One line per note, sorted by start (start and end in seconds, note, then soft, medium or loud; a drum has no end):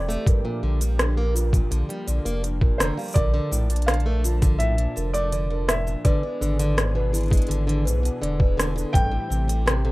0.00 0.17 E1 medium
0.00 0.23 E3 medium
0.00 0.24 A3 medium
0.00 0.24 C4 medium
0.00 0.29 E4 medium
0.00 3.12 G4 medium
0.00 0.29 A4 medium
0.00 0.28 D5 medium
0.00 0.95 D5 medium
0.09 0.25 A3 loud
0.09 shaker soft
0.26 0.43 G2 medium
0.26 3.13 F3 medium
0.26 3.13 A#3 medium
0.26 6.01 D4 medium
0.26 0.44 A#4 medium
0.26 kick loud
0.26 closed hi-hat medium
0.26 shaker soft
0.45 0.61 A#2 medium
0.63 1.62 A#1 loud
0.63 0.79 D3 medium
0.81 0.98 G3 medium
0.81 closed hi-hat medium
0.81 shaker medium
0.99 1.16 D3 medium
0.99 cross-stick medium
0.99 closed hi-hat soft
0.99 shaker soft
1.17 1.34 A#3 loud
1.17 1.34 A#4 medium
1.35 1.52 G2 medium
1.35 1.52 F4 medium
1.35 closed hi-hat soft
1.35 shaker medium
1.53 1.70 A#2 medium
1.53 kick loud
1.53 closed hi-hat soft
1.53 shaker soft
1.71 1.83 A#1 loud
1.71 1.88 D3 medium
1.71 closed hi-hat medium
1.71 shaker soft
1.89 2.07 G3 medium
1.89 closed hi-hat soft
2.07 2.20 A#1 loud
2.07 2.24 D3 medium
2.07 2.25 D5 medium
2.07 closed hi-hat soft
2.07 shaker medium
2.25 2.70 F1 medium
2.25 2.42 A#3 loud
2.25 closed hi-hat soft
2.25 shaker soft
2.43 2.60 G2 medium
2.43 closed hi-hat medium
2.43 shaker soft
2.61 2.78 A#2 medium
2.61 2.79 A#4 medium
2.61 kick loud
2.78 2.92 F1 medium
2.78 2.96 D3 medium
2.78 2.86 C5 medium
2.78 2.97 A#5 medium
2.78 cross-stick medium
2.78 closed hi-hat soft
2.78 shaker medium
2.97 3.15 G3 medium
2.97 3.15 F5 medium
2.97 shaker soft
3.01 shaker soft
3.03 shaker soft
3.05 shaker soft
3.08 shaker soft
3.10 shaker soft
3.12 3.90 D5 loud
3.12 shaker soft
3.14 3.40 A#1 loud
3.14 3.32 D3 medium
3.14 6.02 F3 medium
3.14 3.33 A#4 medium
3.14 kick loud
3.14 closed hi-hat medium
3.14 shaker soft
3.16 6.03 A5 medium
3.16 shaker soft
3.34 3.50 D3 loud
3.51 4.87 A#1 loud
3.51 3.68 A2 medium
3.51 shaker medium
3.70 3.87 A#2 medium
3.70 closed hi-hat soft
3.70 shaker soft
3.76 closed hi-hat soft
3.82 closed hi-hat soft
3.86 4.04 D3 medium
3.86 4.62 F5 medium
3.86 cross-stick medium
3.86 closed hi-hat soft
3.86 shaker soft
3.94 closed hi-hat soft
4.00 closed hi-hat soft
4.06 4.23 A3 medium
4.06 4.24 A#4 medium
4.24 4.41 D3 medium
4.24 4.42 F4 medium
4.24 closed hi-hat soft
4.24 shaker medium
4.42 4.59 D3 medium
4.42 kick loud
4.42 closed hi-hat soft
4.42 shaker soft
4.58 4.77 A2 medium
4.58 5.10 E5 loud
4.58 closed hi-hat medium
4.58 shaker soft
4.78 4.95 A#2 medium
4.78 closed hi-hat soft
4.96 5.96 F1 medium
4.96 5.13 D3 medium
4.96 5.14 A#4 medium
4.96 shaker medium
5.13 5.32 A3 medium
5.13 5.70 D5 loud
5.13 closed hi-hat soft
5.13 shaker soft
5.32 5.49 D3 medium
5.32 5.50 D5 medium
5.32 closed hi-hat medium
5.32 shaker soft
5.50 5.67 D3 medium
5.50 5.68 A#4 medium
5.68 5.85 A2 medium
5.68 6.06 E5 loud
5.68 cross-stick medium
5.68 closed hi-hat soft
5.68 shaker medium
5.87 6.03 A#2 medium
5.87 shaker soft
6.04 6.22 D3 medium
6.04 9.92 E3 medium
6.04 8.91 B3 medium
6.04 8.91 D4 medium
6.04 8.91 G#4 medium
6.04 6.22 B4 medium
6.04 8.18 D5 medium
6.04 kick loud
6.04 closed hi-hat medium
6.04 shaker soft
6.23 6.41 G#3 medium
6.41 7.40 G#1 loud
6.41 6.58 D3 medium
6.41 shaker medium
6.59 6.76 D3 loud
6.59 closed hi-hat medium
6.59 shaker soft
6.77 6.93 G#2 medium
6.77 cross-stick medium
6.77 closed hi-hat soft
6.77 shaker soft
6.95 7.12 B2 medium
6.95 7.13 B4 medium
7.13 7.30 D3 medium
7.13 7.31 E4 medium
7.13 closed hi-hat soft
7.13 shaker medium
7.16 closed hi-hat soft
7.18 closed hi-hat soft
7.23 closed hi-hat soft
7.26 closed hi-hat soft
7.28 closed hi-hat soft
7.30 7.48 G#3 medium
7.30 kick medium
7.30 closed hi-hat soft
7.33 closed hi-hat soft
7.33 shaker soft
7.37 closed hi-hat soft
7.42 closed hi-hat soft
7.47 7.87 G#1 loud
7.47 7.66 D3 medium
7.47 closed hi-hat soft
7.51 closed hi-hat medium
7.51 shaker soft
7.67 7.84 D3 medium
7.67 closed hi-hat soft
7.85 8.10 B1 loud
7.85 8.02 G#2 medium
7.85 8.03 B4 medium
7.85 closed hi-hat soft
7.85 shaker medium
8.03 8.20 B2 medium
8.03 closed hi-hat soft
8.03 shaker soft
8.22 8.85 E1 medium
8.22 8.38 D3 medium
8.22 8.39 D5 medium
8.22 closed hi-hat medium
8.39 8.57 G#3 medium
8.39 8.57 B4 medium
8.39 kick loud
8.57 8.74 D3 medium
8.57 cross-stick medium
8.57 closed hi-hat medium
8.57 shaker medium
8.76 8.92 D3 loud
8.76 shaker soft
8.93 9.18 A1 loud
8.93 9.10 G2 medium
8.93 9.92 A3 medium
8.93 9.92 C4 medium
8.93 9.92 G4 medium
8.93 9.11 A4 medium
8.93 9.92 G5 loud
8.93 kick loud
8.93 closed hi-hat medium
8.93 shaker soft
9.11 9.28 A2 medium
9.30 9.92 A1 loud
9.30 9.47 C3 medium
9.30 shaker medium
9.48 9.65 G3 medium
9.48 closed hi-hat medium
9.48 shaker soft
9.66 9.83 C3 medium
9.66 cross-stick medium
9.66 closed hi-hat soft
9.66 shaker soft
9.84 9.92 C3 loud
9.84 9.92 A4 medium